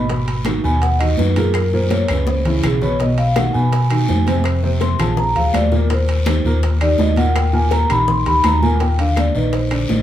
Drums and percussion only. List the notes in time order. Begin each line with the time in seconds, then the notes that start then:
0.08 high bongo, high conga, high timbale, long guiro
0.28 high bongo, high conga, high timbale
0.45 high bongo, high conga, high timbale, short guiro, claves
0.64 high conga, short guiro
0.82 high bongo, high conga, high timbale, long guiro
1.00 high bongo, high conga, high timbale, claves
1.17 high bongo, low bongo, high conga, short guiro
1.36 high bongo, high conga, high timbale, short guiro
1.54 high bongo, high timbale, long guiro, claves
1.72 high bongo, high conga
1.90 high bongo, high conga, high timbale, short guiro
2.08 high timbale, short guiro, claves
2.27 high bongo, high conga, long guiro
2.45 high bongo, low conga, high timbale
2.63 high bongo, low bongo, low conga, high timbale, short guiro, claves
2.82 high bongo, low conga, short guiro
2.99 high bongo, high conga, high timbale, long guiro
3.18 high bongo, high conga, high timbale
3.36 high bongo, high conga, high timbale, short guiro, claves
3.54 high conga, short guiro
3.72 high bongo, high conga, high timbale, long guiro
3.90 high bongo, high conga, high timbale, claves
4.09 high bongo, low bongo, high conga, low timbale, short guiro
4.26 high bongo, high conga, high timbale, short guiro
4.44 high bongo, high conga, high timbale, long guiro, claves
4.63 high bongo, high conga
4.80 high bongo, high conga, high timbale, short guiro
4.99 high conga, low conga, high timbale, short guiro, claves
5.17 high bongo, high conga, low conga, long guiro
5.35 high bongo, high conga, high timbale
5.53 high bongo, low bongo, high conga, high timbale, low timbale, short guiro, claves
5.72 high bongo, high conga, short guiro
5.90 high bongo, high conga, high timbale, long guiro
6.08 high bongo, high conga, high timbale
6.26 high bongo, high conga, high timbale, short guiro, claves
6.45 high conga, short guiro
6.63 high bongo, high conga, high timbale, long guiro
6.80 high bongo, high conga, high timbale, claves
6.98 high bongo, low bongo, high conga, low timbale, short guiro
7.16 high bongo, high conga, high timbale, short guiro
7.35 high bongo, high conga, high timbale, long guiro, claves
7.53 high bongo, high conga
7.71 high bongo, high conga, high timbale, short guiro
7.90 high conga, low conga, high timbale, short guiro, claves
8.08 high bongo, high conga, low conga, long guiro
8.26 high bongo, high conga, high timbale
8.44 high bongo, low bongo, high conga, high timbale, low timbale, short guiro, claves
8.63 high bongo, high conga, short guiro
8.80 high bongo, high conga, high timbale, long guiro
8.98 high bongo, high conga, high timbale
9.16 high bongo, high conga, high timbale, short guiro, claves
9.35 high conga, short guiro
9.53 high bongo, high conga, high timbale, long guiro
9.71 high bongo, high conga, high timbale, claves
9.89 high bongo, low bongo, high conga, low timbale, short guiro